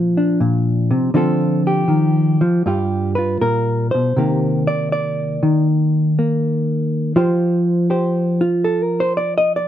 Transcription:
0.00 0.39 A#2 medium
0.00 1.14 F3 medium
0.00 0.16 D4 soft
0.00 1.11 F4 medium
0.17 1.11 D4 soft
0.40 0.91 A#2 medium
0.91 1.14 C3 medium
1.14 1.88 D3 medium
1.14 2.40 F3 medium
1.14 2.62 C4 medium
1.14 2.62 F4 medium
1.14 1.67 A4 medium
1.67 2.65 G4 medium
1.88 2.40 D#3 medium
2.41 2.64 F3 medium
2.66 3.41 G2 medium
2.66 6.17 G3 soft
2.66 3.17 F4 soft
2.66 3.15 G4 soft
3.15 4.14 F4 soft
3.15 3.40 B4 medium
3.41 3.93 A#2 medium
3.41 3.91 A#4 medium
3.91 4.16 B2 medium
3.91 4.66 C5 medium
4.16 5.43 C3 medium
4.16 5.42 D#3 soft
4.16 6.18 A#3 soft
4.16 7.16 G4 soft
4.67 4.91 D5 medium
4.92 5.67 D5 medium
5.43 7.14 D#3 medium
6.19 7.16 A#3 soft
7.16 9.68 F3 medium
7.16 8.41 F4 soft
7.16 7.89 G4 soft
7.16 7.90 C5 soft
7.90 8.64 G4 soft
7.90 9.00 C5 medium
8.41 9.68 F4 medium
8.64 8.83 A4 medium
8.83 9.12 A#4 medium
9.00 9.17 C5 medium
9.17 9.33 D5 medium
9.38 9.56 D#5 loud
9.56 9.68 D5 medium

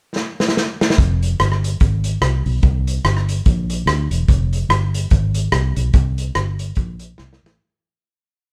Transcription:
0.16 snare medium
0.40 snare medium
0.48 snare medium
0.57 snare medium
0.81 snare loud
0.90 snare medium
0.98 1.33 F1 loud
0.98 kick loud
0.98 closed hi-hat medium
1.23 closed hi-hat medium
1.40 1.75 G1 medium
1.40 cross-stick loud
1.40 closed hi-hat medium
1.52 cross-stick medium
1.64 closed hi-hat loud
1.80 2.16 G#1 medium
1.80 kick loud
1.80 closed hi-hat medium
2.04 closed hi-hat medium
2.21 2.42 C2 medium
2.21 cross-stick loud
2.21 closed hi-hat medium
2.46 2.61 B1 medium
2.46 open hi-hat soft
2.63 2.98 C2 loud
2.63 kick loud
2.63 closed hi-hat medium
2.87 closed hi-hat medium
3.04 3.39 G1 medium
3.04 cross-stick loud
3.04 closed hi-hat medium
3.17 cross-stick medium
3.29 closed hi-hat medium
3.45 3.81 A#1 loud
3.45 kick loud
3.45 closed hi-hat medium
3.70 closed hi-hat loud
3.86 4.07 D2 medium
3.86 cross-stick loud
3.86 closed hi-hat medium
4.11 4.26 E1 medium
4.11 closed hi-hat medium
4.28 4.63 F1 loud
4.28 kick loud
4.28 closed hi-hat medium
4.53 closed hi-hat medium
4.69 5.04 G1 medium
4.69 cross-stick loud
4.69 closed hi-hat medium
4.94 closed hi-hat loud
5.10 5.46 G#1 medium
5.10 kick loud
5.10 closed hi-hat medium
5.34 closed hi-hat loud
5.52 5.73 C2 loud
5.52 cross-stick loud
5.52 closed hi-hat medium
5.76 5.91 B1 medium
5.76 closed hi-hat medium
5.93 6.29 C2 loud
5.93 kick loud
5.93 closed hi-hat medium
6.18 closed hi-hat medium
6.35 6.71 G1 loud
6.35 cross-stick loud
6.35 closed hi-hat medium
6.59 closed hi-hat loud
6.75 7.12 A#1 loud
6.75 kick loud
6.75 closed hi-hat medium
6.99 closed hi-hat loud
7.18 7.39 C2 medium
7.18 snare medium
7.33 snare medium
7.43 7.57 A1 medium
7.43 snare loud

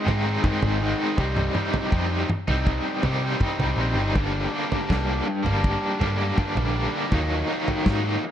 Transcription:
0.04 0.37 G#2 loud
0.04 0.42 D#3 medium
0.04 0.26 G#3 medium
0.04 0.24 C4 medium
0.04 0.22 D#4 medium
0.04 floor tom medium
0.24 0.43 G#3 medium
0.24 0.44 C4 medium
0.24 0.45 D#4 medium
0.43 0.99 G#2 loud
0.43 0.79 D#3 medium
0.43 0.64 G#3 medium
0.43 0.63 C4 loud
0.43 0.61 D#4 loud
0.43 kick loud
0.43 mid tom medium
0.62 0.93 G#1 medium
0.62 0.80 G#3 medium
0.62 0.81 C4 medium
0.62 0.81 D#4 medium
0.62 floor tom medium
0.80 1.15 D#3 medium
0.80 0.99 G#3 medium
0.80 0.98 C4 medium
0.80 0.96 D#4 medium
0.97 1.16 G#3 medium
0.97 1.15 C4 medium
0.97 1.15 D#4 medium
1.17 1.48 C2 medium
1.17 1.53 C3 medium
1.17 1.55 G3 loud
1.17 1.55 C4 loud
1.17 1.56 D#4 medium
1.17 kick loud
1.17 floor tom medium
1.37 mid tom medium
1.54 1.89 C3 medium
1.54 1.91 G3 medium
1.54 1.91 C4 medium
1.54 1.92 D#4 medium
1.54 mid tom medium
1.74 floor tom medium
1.90 2.23 F2 medium
1.90 2.28 C3 medium
1.90 2.12 G3 medium
1.90 2.10 C4 loud
1.90 2.08 D#4 loud
1.90 kick loud
2.10 2.29 G3 soft
2.10 2.28 C4 medium
2.10 2.29 D#4 medium
2.29 muted overdriven electric guitar stroke soft
2.29 mid tom medium
2.48 2.79 C2 medium
2.48 3.03 G3 medium
2.48 3.04 C4 medium
2.48 3.04 D#4 medium
2.48 floor tom medium
2.67 kick loud
3.03 3.40 C3 medium
3.03 3.34 C3 medium
3.03 3.24 G3 medium
3.03 3.23 C4 medium
3.03 3.21 D#4 medium
3.03 floor tom medium
3.23 3.40 G3 medium
3.23 3.42 C4 medium
3.23 3.43 D#4 medium
3.40 3.78 C3 medium
3.40 3.62 G3 loud
3.40 3.61 C4 medium
3.40 3.59 D#4 loud
3.40 kick loud
3.40 mid tom medium
3.59 3.76 C2 medium
3.59 3.79 C4 medium
3.59 3.80 D#4 medium
3.59 floor tom medium
3.63 3.78 G3 soft
3.77 3.94 A#1 medium
3.77 4.13 C3 medium
3.77 3.99 G3 medium
3.77 3.97 C4 medium
3.81 3.96 D#4 medium
3.95 4.12 G1 medium
3.95 4.14 C4 medium
3.95 4.13 D#4 medium
4.00 4.14 G3 medium
4.15 4.45 G1 medium
4.15 4.88 G2 medium
4.15 4.51 D3 loud
4.15 4.52 G3 medium
4.15 4.53 A#3 loud
4.15 4.53 D4 loud
4.15 kick loud
4.15 floor tom medium
4.52 4.89 D3 medium
4.52 4.90 G3 medium
4.52 4.91 A#3 medium
4.52 4.91 D4 medium
4.72 floor tom medium
4.89 5.20 C2 medium
4.89 5.45 G2 medium
4.89 5.26 D3 medium
4.89 5.09 G3 medium
4.89 5.09 A#3 medium
4.89 5.07 D4 medium
4.89 kick loud
4.89 snare medium
5.08 5.26 G3 medium
5.08 5.27 A#3 medium
5.08 5.26 D4 medium
5.27 muted overdriven electric guitar stroke soft
5.43 5.75 G1 medium
5.43 6.00 G3 medium
5.43 6.01 A#3 medium
5.43 6.02 D4 medium
5.43 floor tom medium
5.64 kick loud
6.00 6.31 G2 loud
6.00 6.36 D3 medium
6.00 6.20 G3 medium
6.00 6.18 A#3 medium
6.00 6.16 D4 medium
6.00 floor tom medium
6.18 6.37 G3 medium
6.18 6.38 A#3 medium
6.18 6.38 D4 medium
6.37 6.93 G2 medium
6.37 6.72 D3 medium
6.37 6.56 G3 medium
6.37 6.55 A#3 medium
6.37 6.53 D4 loud
6.37 kick loud
6.37 mid tom medium
6.55 6.86 A#1 medium
6.55 6.73 G3 medium
6.55 6.74 A#3 medium
6.55 6.75 D4 medium
6.55 floor tom medium
6.74 7.09 D3 medium
6.74 6.94 G3 medium
6.74 6.92 A#3 medium
6.74 6.91 D4 medium
6.92 7.11 G3 medium
6.92 7.10 A#3 medium
6.92 7.09 D4 medium
7.11 7.42 D#2 loud
7.11 7.48 D#3 medium
7.11 7.48 F#3 loud
7.11 7.49 A#3 medium
7.11 7.51 D#4 loud
7.11 kick loud
7.11 floor tom medium
7.49 7.84 D#3 medium
7.49 7.86 F#3 medium
7.49 7.86 A#3 medium
7.49 7.88 D#4 medium
7.68 floor tom medium
7.86 8.16 G#2 medium
7.86 8.23 D#3 medium
7.86 8.06 F#3 medium
7.86 8.04 A#3 medium
7.86 8.04 D#4 medium
7.86 kick loud
7.86 snare medium
8.04 8.23 F#3 medium
8.04 8.24 A#3 medium
8.04 8.24 D#4 medium
8.24 muted overdriven electric guitar stroke soft

